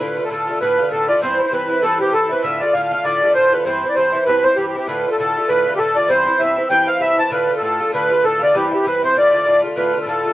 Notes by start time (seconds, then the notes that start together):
0.00 A2 D3 A3 F4 B4
0.17 D3 A3 F4
0.25 A4
0.29 A2 D3 A3 F4 A4
0.47 D3 A3 F4
0.61 A2 D3 A3 F4 B4
0.78 D3 A3 F4
0.90 A2 D3 A3 F4 A4
1.08 D3 A3 F4 D5
1.21 G2 E3 C4 E4 C5
1.39 E3 C4 E4
1.47 C5
1.51 G2 E3 C4 E4 B4
1.68 E3 C4 E4
1.82 G2 E3 C4 E4 A4
1.99 E3 C4 E4 G4
2.12 G2 E3 C4 E4 A4
2.29 E3 C4 E4 B4
2.43 A2 D3 A3 F4 E5
2.60 D3 A3 F4 D5
2.73 A2 D3 A3 F4 F5
2.83 F5
2.91 D3 A3 F4 F5
3.04 A2 D3 A3 F4 D5
3.22 D3 A3 F4
3.34 A2 D3 A3 F4 C5
3.52 D3 A3 F4 B4
3.65 G2 E3 C4 E4 C5
3.83 E3 C4 E4
3.89 D5
3.95 G2 E3 C4 E4 C5
4.12 E3 C4 E4
4.26 G2 E3 C4 E4 B4
4.43 E3 C4 E4 C5
4.56 G2 E3 C4 E4 G4
4.67 G4
4.75 E3 C4 E4 G4
4.87 A2 D3 A3 F4 B4
5.05 D3 A3 F4
5.12 A4
5.18 A2 D3 A3 F4 A4
5.36 D3 A3 F4
5.48 A2 D3 A3 F4 B4
5.66 D3 A3 F4
5.76 A2 D3 A3 G4 A4
5.81 F4
5.96 D3 A3 F4 D5
6.08 G2 E3 C4 E4 C5
6.26 E3 C4 E4
6.39 G2 E3 C4 E4 E5
6.56 E3 C4 E4
6.70 G2 E3 C4 E4 G5
6.86 E3 C4 E4 F5
6.99 G2 E3 C4 E4 E5
7.17 E3 C4 E4 A5
7.30 A2 D3 A3 F4 B4
7.47 D3 A3 F4
7.57 A4
7.61 A2 D3 A3 F4 A4
7.79 D3 A3 F4
7.92 A2 D3 A3 F4 B4
8.10 D3 A3 F4
8.22 A2 D3 A3 F4 A4
8.39 D3 A3 F4 D5
8.54 G2 E3 C4 E4 G4
8.71 E3 C4 E4 G4
8.84 G2 E3 C4 E4 B4
9.01 E3 C4 E4 C5
9.15 A2 D3 A3 F4 D5
9.32 D3 A3 F4
9.44 A2 D3 A3 F4
9.62 D3 A3 F4
9.76 A2 D3 A3 F4 B4
9.93 D3 A3 F4
10.01 A4
10.05 A2 D3 A3 F4 A4
10.23 D3 A3 F4